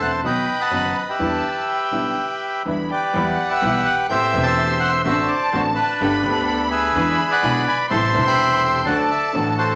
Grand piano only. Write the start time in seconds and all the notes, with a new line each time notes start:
0.00 E1 E2 E3 A3 C4 A4
0.24 B1 B2 D#3 F#3 B3 F#4
0.71 F#1 F#2 D#3 F#3 B3 F#4
1.19 E2 D3 E3 G3 B3 E4
1.92 B1 B2 D3 G3 B3 E4
2.65 E2 D3 E3 G3 B3 E4
3.13 E2 E3 G3 B3 G4
3.61 B1 B2 E3 G3 B3 G4
4.10 A1 A2 E3 A3 C4 G4
4.33 E1 E2 E3 A3 C4 G4
5.05 A1 A2 D3 A3 C4 F#4
5.52 A1 A2 D3 A3 C4 F#4
6.01 G1 G2 D3 A3 B3 G4
6.22 D2 D3 A3 B3 G4
6.95 E2 D3 E3 G#3 B3 E4
7.43 B1 B2 D3 G#3 B3 E4
7.91 A1 A2 C3 G3 A3 E4
8.13 E1 E2 C3 G3 A3 E4
8.86 D2 D3 F#3 A3 F#4
9.33 A1 A2 D3 F#3 A3
9.37 F#4